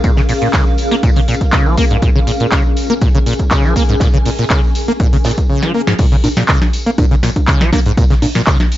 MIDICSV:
0, 0, Header, 1, 4, 480
1, 0, Start_track
1, 0, Key_signature, -5, "minor"
1, 0, Tempo, 495868
1, 39, Time_signature, 4, 2, 24, 8
1, 8494, End_track
2, 0, Start_track
2, 0, Title_t, "Ambient pad"
2, 0, Program_c, 0, 92
2, 0, Note_on_c, 0, 61, 78
2, 0, Note_on_c, 0, 68, 71
2, 0, Note_on_c, 0, 70, 70
2, 0, Note_on_c, 0, 77, 77
2, 2110, Note_on_c, 0, 80, 77
2, 2134, Note_off_c, 0, 77, 0
2, 5319, Note_off_c, 0, 61, 0
2, 5319, Note_off_c, 0, 68, 0
2, 5319, Note_off_c, 0, 70, 0
2, 5344, Note_off_c, 0, 80, 0
2, 8494, End_track
3, 0, Start_track
3, 0, Title_t, "Acid bass"
3, 0, Program_c, 1, 38
3, 38, Note_on_c, 1, 46, 80
3, 108, Note_off_c, 1, 46, 0
3, 165, Note_on_c, 1, 49, 99
3, 203, Note_off_c, 1, 49, 0
3, 278, Note_on_c, 1, 46, 74
3, 320, Note_off_c, 1, 46, 0
3, 405, Note_on_c, 1, 46, 75
3, 468, Note_off_c, 1, 46, 0
3, 518, Note_on_c, 1, 49, 82
3, 623, Note_off_c, 1, 49, 0
3, 884, Note_on_c, 1, 58, 102
3, 922, Note_off_c, 1, 58, 0
3, 998, Note_on_c, 1, 46, 79
3, 1068, Note_off_c, 1, 46, 0
3, 1124, Note_on_c, 1, 49, 98
3, 1162, Note_off_c, 1, 49, 0
3, 1238, Note_on_c, 1, 46, 74
3, 1308, Note_off_c, 1, 46, 0
3, 1478, Note_on_c, 1, 49, 82
3, 1604, Note_on_c, 1, 53, 76
3, 1619, Note_off_c, 1, 49, 0
3, 1698, Note_off_c, 1, 53, 0
3, 1718, Note_on_c, 1, 58, 76
3, 1788, Note_off_c, 1, 58, 0
3, 1844, Note_on_c, 1, 44, 76
3, 1907, Note_off_c, 1, 44, 0
3, 1958, Note_on_c, 1, 46, 82
3, 2028, Note_off_c, 1, 46, 0
3, 2085, Note_on_c, 1, 49, 100
3, 2123, Note_off_c, 1, 49, 0
3, 2198, Note_on_c, 1, 46, 76
3, 2240, Note_off_c, 1, 46, 0
3, 2325, Note_on_c, 1, 46, 77
3, 2387, Note_off_c, 1, 46, 0
3, 2438, Note_on_c, 1, 49, 82
3, 2543, Note_off_c, 1, 49, 0
3, 2805, Note_on_c, 1, 58, 102
3, 2843, Note_off_c, 1, 58, 0
3, 2919, Note_on_c, 1, 46, 80
3, 2988, Note_off_c, 1, 46, 0
3, 3045, Note_on_c, 1, 49, 101
3, 3083, Note_off_c, 1, 49, 0
3, 3159, Note_on_c, 1, 46, 74
3, 3228, Note_off_c, 1, 46, 0
3, 3398, Note_on_c, 1, 49, 83
3, 3525, Note_on_c, 1, 53, 76
3, 3540, Note_off_c, 1, 49, 0
3, 3619, Note_off_c, 1, 53, 0
3, 3639, Note_on_c, 1, 58, 76
3, 3708, Note_off_c, 1, 58, 0
3, 3765, Note_on_c, 1, 44, 77
3, 3828, Note_off_c, 1, 44, 0
3, 3879, Note_on_c, 1, 46, 84
3, 3948, Note_off_c, 1, 46, 0
3, 4005, Note_on_c, 1, 49, 98
3, 4043, Note_off_c, 1, 49, 0
3, 4119, Note_on_c, 1, 46, 76
3, 4161, Note_off_c, 1, 46, 0
3, 4246, Note_on_c, 1, 46, 77
3, 4308, Note_off_c, 1, 46, 0
3, 4359, Note_on_c, 1, 49, 83
3, 4463, Note_off_c, 1, 49, 0
3, 4725, Note_on_c, 1, 58, 99
3, 4763, Note_off_c, 1, 58, 0
3, 4839, Note_on_c, 1, 46, 79
3, 4908, Note_off_c, 1, 46, 0
3, 4965, Note_on_c, 1, 49, 97
3, 5003, Note_off_c, 1, 49, 0
3, 5079, Note_on_c, 1, 46, 74
3, 5148, Note_off_c, 1, 46, 0
3, 5319, Note_on_c, 1, 49, 83
3, 5446, Note_on_c, 1, 53, 77
3, 5460, Note_off_c, 1, 49, 0
3, 5539, Note_off_c, 1, 53, 0
3, 5559, Note_on_c, 1, 58, 75
3, 5629, Note_off_c, 1, 58, 0
3, 5686, Note_on_c, 1, 44, 75
3, 5748, Note_off_c, 1, 44, 0
3, 5799, Note_on_c, 1, 46, 84
3, 5868, Note_off_c, 1, 46, 0
3, 5925, Note_on_c, 1, 49, 97
3, 5963, Note_off_c, 1, 49, 0
3, 6039, Note_on_c, 1, 46, 78
3, 6081, Note_off_c, 1, 46, 0
3, 6165, Note_on_c, 1, 46, 79
3, 6228, Note_off_c, 1, 46, 0
3, 6279, Note_on_c, 1, 49, 84
3, 6383, Note_off_c, 1, 49, 0
3, 6645, Note_on_c, 1, 58, 100
3, 6682, Note_off_c, 1, 58, 0
3, 6758, Note_on_c, 1, 46, 82
3, 6828, Note_off_c, 1, 46, 0
3, 6885, Note_on_c, 1, 49, 102
3, 6923, Note_off_c, 1, 49, 0
3, 6998, Note_on_c, 1, 46, 75
3, 7068, Note_off_c, 1, 46, 0
3, 7238, Note_on_c, 1, 49, 87
3, 7365, Note_on_c, 1, 53, 77
3, 7380, Note_off_c, 1, 49, 0
3, 7459, Note_off_c, 1, 53, 0
3, 7478, Note_on_c, 1, 58, 76
3, 7548, Note_off_c, 1, 58, 0
3, 7605, Note_on_c, 1, 44, 79
3, 7668, Note_off_c, 1, 44, 0
3, 7719, Note_on_c, 1, 46, 83
3, 7788, Note_off_c, 1, 46, 0
3, 7845, Note_on_c, 1, 49, 101
3, 7883, Note_off_c, 1, 49, 0
3, 7959, Note_on_c, 1, 46, 79
3, 8001, Note_off_c, 1, 46, 0
3, 8085, Note_on_c, 1, 46, 78
3, 8148, Note_off_c, 1, 46, 0
3, 8199, Note_on_c, 1, 49, 82
3, 8303, Note_off_c, 1, 49, 0
3, 8494, End_track
4, 0, Start_track
4, 0, Title_t, "Drums"
4, 37, Note_on_c, 9, 54, 81
4, 38, Note_off_c, 9, 54, 0
4, 38, Note_on_c, 9, 54, 49
4, 39, Note_on_c, 9, 36, 108
4, 39, Note_on_c, 9, 42, 60
4, 134, Note_off_c, 9, 54, 0
4, 135, Note_off_c, 9, 36, 0
4, 135, Note_off_c, 9, 42, 0
4, 160, Note_on_c, 9, 38, 42
4, 160, Note_on_c, 9, 54, 26
4, 257, Note_off_c, 9, 38, 0
4, 257, Note_off_c, 9, 54, 0
4, 278, Note_on_c, 9, 46, 96
4, 282, Note_on_c, 9, 54, 77
4, 284, Note_off_c, 9, 46, 0
4, 284, Note_on_c, 9, 46, 73
4, 379, Note_off_c, 9, 54, 0
4, 381, Note_off_c, 9, 46, 0
4, 399, Note_on_c, 9, 54, 35
4, 405, Note_on_c, 9, 42, 50
4, 496, Note_off_c, 9, 54, 0
4, 502, Note_off_c, 9, 42, 0
4, 517, Note_on_c, 9, 39, 107
4, 517, Note_on_c, 9, 54, 83
4, 519, Note_on_c, 9, 36, 111
4, 519, Note_on_c, 9, 42, 63
4, 524, Note_off_c, 9, 54, 0
4, 524, Note_on_c, 9, 38, 110
4, 524, Note_on_c, 9, 54, 49
4, 614, Note_off_c, 9, 39, 0
4, 615, Note_off_c, 9, 36, 0
4, 616, Note_off_c, 9, 42, 0
4, 621, Note_off_c, 9, 38, 0
4, 621, Note_off_c, 9, 54, 0
4, 645, Note_on_c, 9, 54, 25
4, 742, Note_off_c, 9, 54, 0
4, 753, Note_on_c, 9, 54, 80
4, 758, Note_on_c, 9, 46, 96
4, 760, Note_off_c, 9, 54, 0
4, 760, Note_on_c, 9, 54, 66
4, 855, Note_off_c, 9, 46, 0
4, 857, Note_off_c, 9, 54, 0
4, 884, Note_on_c, 9, 54, 38
4, 885, Note_on_c, 9, 42, 51
4, 886, Note_on_c, 9, 38, 42
4, 981, Note_off_c, 9, 54, 0
4, 982, Note_off_c, 9, 42, 0
4, 983, Note_off_c, 9, 38, 0
4, 998, Note_on_c, 9, 42, 64
4, 998, Note_on_c, 9, 54, 45
4, 999, Note_off_c, 9, 54, 0
4, 999, Note_on_c, 9, 36, 113
4, 999, Note_on_c, 9, 54, 87
4, 1095, Note_off_c, 9, 36, 0
4, 1095, Note_off_c, 9, 42, 0
4, 1096, Note_off_c, 9, 54, 0
4, 1119, Note_on_c, 9, 54, 24
4, 1125, Note_on_c, 9, 46, 57
4, 1216, Note_off_c, 9, 54, 0
4, 1222, Note_off_c, 9, 46, 0
4, 1239, Note_on_c, 9, 46, 98
4, 1242, Note_on_c, 9, 54, 59
4, 1243, Note_off_c, 9, 54, 0
4, 1243, Note_on_c, 9, 54, 87
4, 1302, Note_on_c, 9, 42, 60
4, 1335, Note_off_c, 9, 46, 0
4, 1340, Note_off_c, 9, 54, 0
4, 1365, Note_off_c, 9, 42, 0
4, 1365, Note_on_c, 9, 36, 56
4, 1365, Note_on_c, 9, 42, 49
4, 1370, Note_on_c, 9, 54, 34
4, 1462, Note_off_c, 9, 36, 0
4, 1462, Note_off_c, 9, 42, 0
4, 1467, Note_off_c, 9, 54, 0
4, 1470, Note_on_c, 9, 54, 53
4, 1477, Note_on_c, 9, 39, 112
4, 1479, Note_on_c, 9, 36, 112
4, 1479, Note_on_c, 9, 38, 103
4, 1479, Note_on_c, 9, 42, 64
4, 1481, Note_off_c, 9, 54, 0
4, 1481, Note_on_c, 9, 54, 85
4, 1574, Note_off_c, 9, 39, 0
4, 1575, Note_off_c, 9, 36, 0
4, 1576, Note_off_c, 9, 38, 0
4, 1576, Note_off_c, 9, 42, 0
4, 1577, Note_off_c, 9, 54, 0
4, 1607, Note_on_c, 9, 54, 25
4, 1704, Note_off_c, 9, 54, 0
4, 1717, Note_on_c, 9, 54, 70
4, 1718, Note_on_c, 9, 46, 100
4, 1719, Note_on_c, 9, 36, 78
4, 1722, Note_off_c, 9, 54, 0
4, 1722, Note_on_c, 9, 54, 84
4, 1815, Note_off_c, 9, 36, 0
4, 1815, Note_off_c, 9, 46, 0
4, 1818, Note_off_c, 9, 54, 0
4, 1839, Note_on_c, 9, 54, 34
4, 1845, Note_on_c, 9, 42, 50
4, 1936, Note_off_c, 9, 54, 0
4, 1942, Note_off_c, 9, 42, 0
4, 1954, Note_on_c, 9, 54, 50
4, 1959, Note_on_c, 9, 36, 109
4, 1959, Note_on_c, 9, 42, 65
4, 1962, Note_off_c, 9, 54, 0
4, 1962, Note_on_c, 9, 54, 87
4, 2055, Note_off_c, 9, 36, 0
4, 2056, Note_off_c, 9, 42, 0
4, 2059, Note_off_c, 9, 54, 0
4, 2086, Note_on_c, 9, 54, 23
4, 2183, Note_off_c, 9, 54, 0
4, 2199, Note_on_c, 9, 46, 93
4, 2202, Note_on_c, 9, 54, 80
4, 2205, Note_off_c, 9, 54, 0
4, 2205, Note_on_c, 9, 54, 73
4, 2296, Note_off_c, 9, 46, 0
4, 2302, Note_off_c, 9, 54, 0
4, 2323, Note_on_c, 9, 54, 39
4, 2325, Note_on_c, 9, 42, 52
4, 2420, Note_off_c, 9, 54, 0
4, 2422, Note_off_c, 9, 42, 0
4, 2437, Note_on_c, 9, 38, 120
4, 2437, Note_on_c, 9, 39, 113
4, 2439, Note_on_c, 9, 36, 108
4, 2439, Note_on_c, 9, 42, 67
4, 2441, Note_on_c, 9, 54, 46
4, 2444, Note_off_c, 9, 54, 0
4, 2444, Note_on_c, 9, 54, 87
4, 2534, Note_off_c, 9, 38, 0
4, 2534, Note_off_c, 9, 39, 0
4, 2535, Note_off_c, 9, 36, 0
4, 2535, Note_off_c, 9, 42, 0
4, 2540, Note_off_c, 9, 54, 0
4, 2556, Note_on_c, 9, 54, 22
4, 2653, Note_off_c, 9, 54, 0
4, 2676, Note_on_c, 9, 54, 83
4, 2678, Note_on_c, 9, 46, 95
4, 2680, Note_off_c, 9, 54, 0
4, 2680, Note_on_c, 9, 54, 70
4, 2775, Note_off_c, 9, 46, 0
4, 2777, Note_off_c, 9, 54, 0
4, 2805, Note_on_c, 9, 42, 54
4, 2808, Note_on_c, 9, 54, 35
4, 2902, Note_off_c, 9, 42, 0
4, 2905, Note_off_c, 9, 54, 0
4, 2915, Note_on_c, 9, 54, 46
4, 2919, Note_on_c, 9, 36, 112
4, 2919, Note_on_c, 9, 42, 68
4, 2921, Note_off_c, 9, 54, 0
4, 2921, Note_on_c, 9, 54, 91
4, 3016, Note_off_c, 9, 36, 0
4, 3016, Note_off_c, 9, 42, 0
4, 3018, Note_off_c, 9, 54, 0
4, 3045, Note_on_c, 9, 54, 23
4, 3142, Note_off_c, 9, 54, 0
4, 3158, Note_on_c, 9, 54, 63
4, 3159, Note_on_c, 9, 46, 93
4, 3162, Note_off_c, 9, 54, 0
4, 3162, Note_on_c, 9, 54, 83
4, 3223, Note_on_c, 9, 42, 63
4, 3256, Note_off_c, 9, 46, 0
4, 3259, Note_off_c, 9, 54, 0
4, 3280, Note_on_c, 9, 54, 35
4, 3285, Note_on_c, 9, 36, 57
4, 3286, Note_off_c, 9, 42, 0
4, 3286, Note_on_c, 9, 42, 49
4, 3377, Note_off_c, 9, 54, 0
4, 3382, Note_off_c, 9, 36, 0
4, 3383, Note_off_c, 9, 42, 0
4, 3396, Note_on_c, 9, 54, 84
4, 3398, Note_off_c, 9, 54, 0
4, 3398, Note_on_c, 9, 39, 118
4, 3398, Note_on_c, 9, 54, 45
4, 3399, Note_on_c, 9, 36, 114
4, 3399, Note_on_c, 9, 38, 96
4, 3399, Note_on_c, 9, 42, 67
4, 3494, Note_off_c, 9, 39, 0
4, 3495, Note_off_c, 9, 54, 0
4, 3496, Note_off_c, 9, 36, 0
4, 3496, Note_off_c, 9, 38, 0
4, 3496, Note_off_c, 9, 42, 0
4, 3519, Note_on_c, 9, 54, 21
4, 3525, Note_on_c, 9, 38, 35
4, 3616, Note_off_c, 9, 54, 0
4, 3622, Note_off_c, 9, 38, 0
4, 3639, Note_on_c, 9, 36, 76
4, 3639, Note_on_c, 9, 46, 101
4, 3643, Note_on_c, 9, 54, 60
4, 3648, Note_off_c, 9, 54, 0
4, 3648, Note_on_c, 9, 54, 88
4, 3736, Note_off_c, 9, 36, 0
4, 3736, Note_off_c, 9, 46, 0
4, 3745, Note_off_c, 9, 54, 0
4, 3766, Note_on_c, 9, 42, 52
4, 3774, Note_on_c, 9, 54, 37
4, 3862, Note_off_c, 9, 42, 0
4, 3871, Note_off_c, 9, 54, 0
4, 3873, Note_on_c, 9, 38, 105
4, 3879, Note_on_c, 9, 36, 110
4, 3879, Note_on_c, 9, 42, 67
4, 3881, Note_on_c, 9, 54, 82
4, 3882, Note_off_c, 9, 54, 0
4, 3882, Note_on_c, 9, 54, 48
4, 3970, Note_off_c, 9, 38, 0
4, 3976, Note_off_c, 9, 36, 0
4, 3976, Note_off_c, 9, 42, 0
4, 3979, Note_off_c, 9, 54, 0
4, 3998, Note_on_c, 9, 54, 22
4, 4095, Note_off_c, 9, 54, 0
4, 4119, Note_on_c, 9, 46, 98
4, 4120, Note_off_c, 9, 46, 0
4, 4120, Note_on_c, 9, 46, 78
4, 4121, Note_on_c, 9, 54, 87
4, 4217, Note_off_c, 9, 46, 0
4, 4218, Note_off_c, 9, 54, 0
4, 4245, Note_on_c, 9, 42, 54
4, 4261, Note_on_c, 9, 54, 38
4, 4342, Note_off_c, 9, 42, 0
4, 4356, Note_off_c, 9, 54, 0
4, 4356, Note_on_c, 9, 54, 46
4, 4357, Note_off_c, 9, 54, 0
4, 4357, Note_on_c, 9, 54, 80
4, 4358, Note_on_c, 9, 39, 120
4, 4359, Note_on_c, 9, 36, 113
4, 4359, Note_on_c, 9, 42, 68
4, 4362, Note_on_c, 9, 38, 120
4, 4454, Note_off_c, 9, 39, 0
4, 4454, Note_off_c, 9, 54, 0
4, 4456, Note_off_c, 9, 36, 0
4, 4456, Note_off_c, 9, 42, 0
4, 4459, Note_off_c, 9, 38, 0
4, 4490, Note_on_c, 9, 54, 25
4, 4587, Note_off_c, 9, 54, 0
4, 4598, Note_on_c, 9, 54, 82
4, 4599, Note_on_c, 9, 46, 101
4, 4695, Note_off_c, 9, 54, 0
4, 4696, Note_off_c, 9, 46, 0
4, 4725, Note_on_c, 9, 42, 54
4, 4728, Note_on_c, 9, 54, 38
4, 4822, Note_off_c, 9, 42, 0
4, 4824, Note_off_c, 9, 54, 0
4, 4837, Note_on_c, 9, 54, 57
4, 4838, Note_off_c, 9, 54, 0
4, 4838, Note_on_c, 9, 54, 47
4, 4839, Note_on_c, 9, 36, 112
4, 4839, Note_on_c, 9, 42, 69
4, 4935, Note_off_c, 9, 54, 0
4, 4936, Note_off_c, 9, 36, 0
4, 4936, Note_off_c, 9, 42, 0
4, 4965, Note_on_c, 9, 46, 59
4, 4967, Note_on_c, 9, 54, 26
4, 5062, Note_off_c, 9, 46, 0
4, 5064, Note_off_c, 9, 54, 0
4, 5072, Note_on_c, 9, 54, 72
4, 5079, Note_on_c, 9, 38, 108
4, 5079, Note_on_c, 9, 46, 96
4, 5080, Note_off_c, 9, 54, 0
4, 5080, Note_on_c, 9, 54, 87
4, 5142, Note_on_c, 9, 42, 63
4, 5176, Note_off_c, 9, 38, 0
4, 5176, Note_off_c, 9, 46, 0
4, 5177, Note_off_c, 9, 54, 0
4, 5201, Note_on_c, 9, 54, 40
4, 5205, Note_off_c, 9, 42, 0
4, 5205, Note_on_c, 9, 36, 60
4, 5205, Note_on_c, 9, 42, 52
4, 5297, Note_off_c, 9, 54, 0
4, 5302, Note_off_c, 9, 36, 0
4, 5302, Note_off_c, 9, 42, 0
4, 5445, Note_on_c, 9, 38, 70
4, 5542, Note_off_c, 9, 38, 0
4, 5685, Note_on_c, 9, 38, 91
4, 5782, Note_off_c, 9, 38, 0
4, 5793, Note_on_c, 9, 54, 87
4, 5795, Note_off_c, 9, 54, 0
4, 5795, Note_on_c, 9, 54, 58
4, 5799, Note_on_c, 9, 36, 122
4, 5799, Note_on_c, 9, 42, 53
4, 5799, Note_on_c, 9, 49, 103
4, 5892, Note_off_c, 9, 54, 0
4, 5896, Note_off_c, 9, 36, 0
4, 5896, Note_off_c, 9, 42, 0
4, 5896, Note_off_c, 9, 49, 0
4, 5922, Note_on_c, 9, 54, 26
4, 5925, Note_on_c, 9, 42, 27
4, 6019, Note_off_c, 9, 54, 0
4, 6022, Note_off_c, 9, 42, 0
4, 6038, Note_on_c, 9, 46, 105
4, 6038, Note_on_c, 9, 63, 58
4, 6042, Note_on_c, 9, 54, 69
4, 6044, Note_off_c, 9, 54, 0
4, 6044, Note_on_c, 9, 54, 92
4, 6135, Note_off_c, 9, 46, 0
4, 6135, Note_off_c, 9, 63, 0
4, 6141, Note_off_c, 9, 54, 0
4, 6165, Note_on_c, 9, 38, 81
4, 6165, Note_on_c, 9, 42, 57
4, 6169, Note_on_c, 9, 54, 39
4, 6262, Note_off_c, 9, 38, 0
4, 6262, Note_off_c, 9, 42, 0
4, 6266, Note_off_c, 9, 54, 0
4, 6275, Note_on_c, 9, 54, 57
4, 6277, Note_on_c, 9, 38, 111
4, 6277, Note_on_c, 9, 39, 125
4, 6279, Note_on_c, 9, 36, 120
4, 6279, Note_on_c, 9, 42, 55
4, 6285, Note_off_c, 9, 54, 0
4, 6285, Note_on_c, 9, 54, 88
4, 6374, Note_off_c, 9, 38, 0
4, 6374, Note_off_c, 9, 39, 0
4, 6375, Note_off_c, 9, 42, 0
4, 6376, Note_off_c, 9, 36, 0
4, 6382, Note_off_c, 9, 54, 0
4, 6405, Note_on_c, 9, 38, 59
4, 6405, Note_on_c, 9, 42, 28
4, 6405, Note_on_c, 9, 63, 37
4, 6407, Note_on_c, 9, 54, 26
4, 6502, Note_off_c, 9, 38, 0
4, 6502, Note_off_c, 9, 42, 0
4, 6502, Note_off_c, 9, 63, 0
4, 6504, Note_off_c, 9, 54, 0
4, 6516, Note_on_c, 9, 54, 96
4, 6519, Note_on_c, 9, 46, 102
4, 6520, Note_off_c, 9, 54, 0
4, 6520, Note_on_c, 9, 54, 79
4, 6615, Note_off_c, 9, 46, 0
4, 6616, Note_off_c, 9, 54, 0
4, 6645, Note_on_c, 9, 42, 55
4, 6648, Note_on_c, 9, 54, 36
4, 6742, Note_off_c, 9, 42, 0
4, 6745, Note_off_c, 9, 54, 0
4, 6756, Note_on_c, 9, 54, 53
4, 6759, Note_on_c, 9, 36, 121
4, 6759, Note_on_c, 9, 42, 57
4, 6759, Note_on_c, 9, 63, 59
4, 6762, Note_off_c, 9, 54, 0
4, 6762, Note_on_c, 9, 54, 82
4, 6855, Note_off_c, 9, 42, 0
4, 6855, Note_off_c, 9, 63, 0
4, 6856, Note_off_c, 9, 36, 0
4, 6859, Note_off_c, 9, 54, 0
4, 6885, Note_on_c, 9, 42, 28
4, 6885, Note_on_c, 9, 54, 25
4, 6982, Note_off_c, 9, 42, 0
4, 6982, Note_off_c, 9, 54, 0
4, 6997, Note_on_c, 9, 54, 62
4, 6998, Note_off_c, 9, 54, 0
4, 6998, Note_on_c, 9, 54, 89
4, 6999, Note_on_c, 9, 38, 58
4, 6999, Note_on_c, 9, 46, 105
4, 7094, Note_off_c, 9, 54, 0
4, 7095, Note_off_c, 9, 38, 0
4, 7095, Note_off_c, 9, 46, 0
4, 7125, Note_on_c, 9, 36, 61
4, 7125, Note_on_c, 9, 42, 53
4, 7125, Note_on_c, 9, 63, 36
4, 7129, Note_on_c, 9, 54, 41
4, 7222, Note_off_c, 9, 36, 0
4, 7222, Note_off_c, 9, 42, 0
4, 7222, Note_off_c, 9, 63, 0
4, 7225, Note_off_c, 9, 54, 0
4, 7236, Note_on_c, 9, 54, 89
4, 7237, Note_on_c, 9, 39, 126
4, 7239, Note_on_c, 9, 36, 121
4, 7239, Note_on_c, 9, 42, 56
4, 7240, Note_off_c, 9, 54, 0
4, 7240, Note_on_c, 9, 54, 50
4, 7242, Note_on_c, 9, 38, 111
4, 7334, Note_off_c, 9, 39, 0
4, 7335, Note_off_c, 9, 42, 0
4, 7336, Note_off_c, 9, 36, 0
4, 7337, Note_off_c, 9, 54, 0
4, 7339, Note_off_c, 9, 38, 0
4, 7358, Note_on_c, 9, 38, 34
4, 7365, Note_off_c, 9, 38, 0
4, 7365, Note_on_c, 9, 38, 83
4, 7365, Note_on_c, 9, 42, 27
4, 7365, Note_on_c, 9, 54, 23
4, 7461, Note_off_c, 9, 54, 0
4, 7462, Note_off_c, 9, 38, 0
4, 7462, Note_off_c, 9, 42, 0
4, 7477, Note_on_c, 9, 54, 66
4, 7479, Note_on_c, 9, 36, 82
4, 7479, Note_on_c, 9, 38, 61
4, 7479, Note_on_c, 9, 46, 108
4, 7479, Note_on_c, 9, 63, 58
4, 7480, Note_off_c, 9, 54, 0
4, 7480, Note_on_c, 9, 54, 90
4, 7576, Note_off_c, 9, 36, 0
4, 7576, Note_off_c, 9, 38, 0
4, 7576, Note_off_c, 9, 46, 0
4, 7576, Note_off_c, 9, 54, 0
4, 7576, Note_off_c, 9, 63, 0
4, 7604, Note_on_c, 9, 54, 42
4, 7606, Note_on_c, 9, 42, 57
4, 7701, Note_off_c, 9, 54, 0
4, 7702, Note_off_c, 9, 42, 0
4, 7719, Note_on_c, 9, 36, 125
4, 7719, Note_on_c, 9, 42, 51
4, 7722, Note_on_c, 9, 54, 57
4, 7723, Note_off_c, 9, 54, 0
4, 7723, Note_on_c, 9, 54, 94
4, 7816, Note_off_c, 9, 36, 0
4, 7816, Note_off_c, 9, 42, 0
4, 7820, Note_off_c, 9, 54, 0
4, 7840, Note_on_c, 9, 54, 26
4, 7845, Note_on_c, 9, 42, 26
4, 7847, Note_on_c, 9, 38, 38
4, 7937, Note_off_c, 9, 54, 0
4, 7942, Note_off_c, 9, 42, 0
4, 7944, Note_off_c, 9, 38, 0
4, 7958, Note_on_c, 9, 46, 85
4, 7959, Note_off_c, 9, 46, 0
4, 7959, Note_on_c, 9, 46, 107
4, 7959, Note_on_c, 9, 54, 88
4, 7959, Note_on_c, 9, 63, 59
4, 8055, Note_off_c, 9, 54, 0
4, 8056, Note_off_c, 9, 46, 0
4, 8056, Note_off_c, 9, 63, 0
4, 8086, Note_on_c, 9, 38, 79
4, 8086, Note_on_c, 9, 42, 55
4, 8088, Note_on_c, 9, 54, 45
4, 8182, Note_off_c, 9, 38, 0
4, 8182, Note_off_c, 9, 42, 0
4, 8185, Note_off_c, 9, 54, 0
4, 8195, Note_on_c, 9, 54, 88
4, 8197, Note_on_c, 9, 38, 126
4, 8197, Note_on_c, 9, 39, 123
4, 8198, Note_off_c, 9, 54, 0
4, 8198, Note_on_c, 9, 54, 57
4, 8199, Note_on_c, 9, 36, 126
4, 8199, Note_on_c, 9, 42, 52
4, 8293, Note_off_c, 9, 38, 0
4, 8294, Note_off_c, 9, 39, 0
4, 8295, Note_off_c, 9, 54, 0
4, 8296, Note_off_c, 9, 36, 0
4, 8296, Note_off_c, 9, 42, 0
4, 8325, Note_on_c, 9, 38, 60
4, 8325, Note_on_c, 9, 42, 27
4, 8325, Note_on_c, 9, 63, 39
4, 8330, Note_on_c, 9, 54, 26
4, 8422, Note_off_c, 9, 38, 0
4, 8422, Note_off_c, 9, 42, 0
4, 8422, Note_off_c, 9, 63, 0
4, 8427, Note_off_c, 9, 54, 0
4, 8439, Note_on_c, 9, 46, 110
4, 8440, Note_on_c, 9, 54, 88
4, 8441, Note_off_c, 9, 54, 0
4, 8441, Note_on_c, 9, 54, 76
4, 8494, Note_off_c, 9, 46, 0
4, 8494, Note_off_c, 9, 54, 0
4, 8494, End_track
0, 0, End_of_file